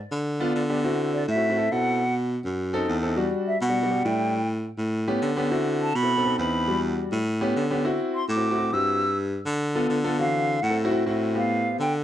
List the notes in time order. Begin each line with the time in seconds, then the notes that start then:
0.11 D3
0.40 B3 D4 F4
0.55 D3
0.69 B3 D4 G4
0.84 C4 E4 F#4
1.14 D5
1.28 A2 E5
1.36 C4 E4 F#4
1.50 C4 E4 F#4
1.57 C4 E4 A4
1.71 B2 C4 E4 A4 F#5
2.44 F#2
2.73 C4 D#4 A4
2.88 E2
3.02 C4 D#4 A4
3.17 G3 D4 F#4
3.47 E5
3.61 B2 F#5
3.69 G3 D4 F#4
3.83 G3 D4 F#4
3.91 G3 D4 G4
4.05 A2 G3 D4 E4 G5
4.78 A2
5.08 B3 C#4 G4
5.22 D3
5.37 B3 C#4 G4
5.51 C4 E4 F#4
5.82 A5
5.95 B2 B5
6.03 C4 E4 A4
6.17 C4 D#4 A4
6.24 C4 D#4 A4
6.38 E2 C4 D#4 B4 B5
6.68 G3 D4 F#4
7.12 A2
7.41 B3 C#4 G4
7.56 D3
7.70 B3 C#4 G4
7.85 C4 E4 F#4
8.15 C6
8.29 A2 D6
8.36 C4 E4 F#4
8.51 C4 E4 F#4
8.58 C4 E4 F#4
8.72 G2 C4 E4 F#4 E6
9.46 D3
9.75 B3 F4 A4
9.89 D3
10.04 B3 F4 A4
10.19 E3 C4 F#4 F5
10.62 A2 F#5
10.70 C4 E4 A4
10.84 C4 E4 F#4
10.91 C4 E4 F#4
11.06 A2 C4 E4 F#4
11.35 B3 C4 G4 F5
11.79 D3 G5